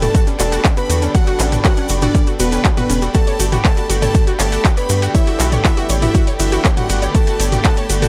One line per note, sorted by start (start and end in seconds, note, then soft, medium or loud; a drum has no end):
0.00 3.11 D3 medium
0.00 3.11 G3 medium
0.00 3.11 B3 medium
0.00 3.11 D4 medium
0.00 0.08 F#4 medium
0.00 8.08 A4 medium
0.00 0.24 A4 loud
0.00 8.08 D5 medium
0.00 8.08 G5 medium
0.00 0.24 A5 loud
0.00 8.08 B5 medium
0.00 closed hi-hat soft
0.00 mid tom medium
0.00 shaker soft
0.15 0.24 F#4 loud
0.15 kick loud
0.15 closed hi-hat medium
0.15 shaker medium
0.27 0.36 C#4 medium
0.27 closed hi-hat soft
0.27 shaker soft
0.40 0.58 E1 medium
0.40 0.45 F#4 medium
0.40 0.61 A4 loud
0.40 0.61 A5 medium
0.40 clap medium
0.40 open hi-hat loud
0.40 ride medium
0.40 shaker loud
0.52 0.61 F#4 loud
0.52 closed hi-hat soft
0.52 shaker soft
0.64 0.74 C#4 medium
0.64 kick loud
0.64 clap loud
0.64 closed hi-hat medium
0.64 shaker medium
0.77 0.83 F#4 medium
0.77 0.99 B4 loud
0.77 0.99 B5 loud
0.77 closed hi-hat soft
0.77 shaker soft
0.90 1.08 E2 medium
0.90 0.99 F#4 loud
0.90 open hi-hat loud
0.90 ride medium
0.90 shaker medium
1.02 1.11 C#4 medium
1.02 closed hi-hat soft
1.02 shaker soft
1.15 1.20 F#4 medium
1.15 1.44 F#4 loud
1.15 1.44 F#5 loud
1.15 kick loud
1.15 closed hi-hat medium
1.15 shaker medium
1.27 1.36 F#4 loud
1.27 closed hi-hat soft
1.27 shaker soft
1.39 1.58 A1 medium
1.39 1.49 C#4 medium
1.39 clap medium
1.39 open hi-hat loud
1.39 ride medium
1.39 shaker medium
1.52 1.58 F#4 medium
1.52 closed hi-hat soft
1.52 mid tom medium
1.52 shaker soft
1.64 1.86 F#4 loud
1.64 1.74 F#4 loud
1.64 1.86 F#5 loud
1.64 kick loud
1.64 clap loud
1.64 closed hi-hat medium
1.64 shaker medium
1.77 1.86 C#4 medium
1.77 closed hi-hat soft
1.77 shaker soft
1.89 2.08 F#1 loud
1.89 1.95 F#4 medium
1.89 open hi-hat loud
1.89 ride medium
1.89 shaker medium
2.02 2.24 D4 loud
2.02 2.11 F#4 loud
2.02 2.24 D5 medium
2.02 closed hi-hat soft
2.02 mid tom medium
2.02 shaker soft
2.15 2.24 C#4 medium
2.15 kick loud
2.15 closed hi-hat medium
2.15 shaker soft
2.27 2.33 F#4 medium
2.27 closed hi-hat soft
2.27 shaker soft
2.40 2.58 E1 medium
2.40 2.61 B3 loud
2.40 2.49 F#4 loud
2.40 2.61 B4 loud
2.40 open hi-hat loud
2.40 ride medium
2.40 shaker loud
2.52 2.61 C#4 medium
2.52 closed hi-hat soft
2.52 shaker soft
2.65 2.70 F#4 medium
2.65 kick loud
2.65 clap loud
2.65 closed hi-hat medium
2.65 shaker medium
2.77 2.99 B3 loud
2.77 2.86 F#4 loud
2.77 2.99 B4 medium
2.77 closed hi-hat soft
2.77 mid tom medium
2.77 shaker soft
2.90 3.08 E1 loud
2.90 2.99 C#4 medium
2.90 open hi-hat loud
2.90 ride medium
2.90 shaker medium
3.02 3.08 F#4 medium
3.02 closed hi-hat soft
3.02 shaker soft
3.14 8.08 D3 medium
3.14 8.08 A3 medium
3.14 8.08 B3 medium
3.14 3.24 F#4 loud
3.14 8.08 G4 medium
3.14 3.44 A4 loud
3.14 3.44 A5 loud
3.14 kick loud
3.14 closed hi-hat medium
3.14 shaker soft
3.27 3.33 C#5 medium
3.27 closed hi-hat soft
3.27 shaker soft
3.40 3.58 G1 loud
3.40 3.45 F#4 medium
3.40 open hi-hat loud
3.40 ride medium
3.40 shaker loud
3.52 3.61 F#4 loud
3.52 closed hi-hat soft
3.52 mid tom medium
3.52 shaker soft
3.65 3.86 A4 loud
3.65 3.70 C#5 medium
3.65 3.86 A5 loud
3.65 kick loud
3.65 clap loud
3.65 closed hi-hat medium
3.65 shaker soft
3.77 3.83 F#4 medium
3.77 closed hi-hat soft
3.77 shaker soft
3.90 4.08 G1 medium
3.90 3.99 F#4 loud
3.90 open hi-hat loud
3.90 ride medium
3.90 shaker loud
4.02 4.24 A4 loud
4.02 4.08 C#5 medium
4.02 4.24 A5 loud
4.02 closed hi-hat soft
4.02 mid tom medium
4.02 shaker soft
4.15 4.20 F#4 medium
4.15 kick loud
4.15 closed hi-hat medium
4.15 shaker medium
4.27 4.36 F#4 loud
4.27 closed hi-hat soft
4.27 shaker soft
4.39 4.58 G1 medium
4.39 4.61 A4 loud
4.39 4.45 C#5 medium
4.39 4.61 A5 medium
4.39 clap medium
4.39 open hi-hat loud
4.39 ride medium
4.39 shaker medium
4.52 4.58 F#4 medium
4.52 closed hi-hat soft
4.52 shaker soft
4.65 4.74 F#4 loud
4.65 kick loud
4.65 clap loud
4.65 closed hi-hat medium
4.65 shaker medium
4.77 4.99 B4 loud
4.77 4.83 C#5 medium
4.77 4.99 B5 medium
4.77 closed hi-hat soft
4.77 shaker soft
4.89 5.08 G2 medium
4.89 4.95 F#4 medium
4.89 open hi-hat loud
4.89 ride medium
4.89 shaker medium
5.02 5.11 F#4 loud
5.02 closed hi-hat soft
5.02 shaker soft
5.14 5.44 E4 loud
5.14 5.20 C#5 medium
5.14 5.44 E5 loud
5.14 kick loud
5.14 closed hi-hat medium
5.14 shaker medium
5.27 5.33 F#4 medium
5.27 closed hi-hat soft
5.27 shaker soft
5.40 5.58 B1 medium
5.40 5.49 F#4 loud
5.40 clap medium
5.40 open hi-hat loud
5.40 ride medium
5.40 shaker medium
5.52 5.58 C#5 medium
5.52 closed hi-hat soft
5.52 mid tom medium
5.52 shaker soft
5.65 5.86 E4 loud
5.65 5.70 F#4 medium
5.65 5.86 E5 loud
5.65 kick loud
5.65 clap loud
5.65 closed hi-hat medium
5.65 shaker medium
5.77 5.86 F#4 loud
5.77 closed hi-hat soft
5.77 shaker soft
5.89 6.08 A1 loud
5.89 5.95 C#5 medium
5.89 open hi-hat medium
5.89 ride medium
5.89 shaker loud
6.02 6.24 E4 loud
6.02 6.08 F#4 medium
6.02 6.24 E5 medium
6.02 closed hi-hat soft
6.02 mid tom medium
6.02 shaker soft
6.15 6.24 F#4 loud
6.15 kick loud
6.15 closed hi-hat medium
6.15 shaker soft
6.27 6.33 C#5 medium
6.27 closed hi-hat soft
6.27 shaker soft
6.40 6.58 G1 loud
6.40 6.62 E4 loud
6.40 6.45 F#4 medium
6.40 6.61 E5 loud
6.40 open hi-hat loud
6.40 ride medium
6.40 shaker medium
6.52 6.61 F#4 loud
6.52 closed hi-hat soft
6.52 shaker soft
6.65 6.70 C#5 medium
6.65 kick loud
6.65 clap loud
6.65 closed hi-hat medium
6.65 shaker medium
6.77 6.99 F#4 loud
6.77 6.83 F#4 medium
6.77 6.99 F#5 medium
6.77 closed hi-hat soft
6.77 mid tom medium
6.77 shaker soft
6.90 7.08 G1 medium
6.90 6.99 F#4 loud
6.90 open hi-hat medium
6.90 ride medium
6.90 shaker medium
7.02 7.08 C#5 medium
7.02 closed hi-hat soft
7.02 shaker soft
7.15 7.20 F#4 medium
7.15 7.44 A4 loud
7.15 7.44 A5 loud
7.15 kick loud
7.15 closed hi-hat medium
7.15 shaker soft
7.27 7.36 F#4 loud
7.27 closed hi-hat soft
7.27 shaker soft
7.40 7.58 G1 loud
7.40 7.45 C#5 medium
7.40 open hi-hat loud
7.40 ride medium
7.40 shaker medium
7.52 7.58 F#4 medium
7.52 closed hi-hat soft
7.52 mid tom medium
7.52 shaker soft
7.64 7.74 F#4 loud
7.64 7.86 A4 loud
7.64 7.86 A5 medium
7.64 kick loud
7.64 clap loud
7.64 closed hi-hat medium
7.64 shaker soft
7.77 7.83 C#5 medium
7.77 closed hi-hat soft
7.77 shaker soft
7.90 8.08 G1 medium
7.90 7.95 F#4 medium
7.90 open hi-hat medium
7.90 ride medium
7.90 shaker medium
8.02 8.08 F#4 loud
8.02 8.08 A4 loud
8.02 8.08 A5 medium
8.02 closed hi-hat soft
8.02 mid tom medium
8.02 shaker soft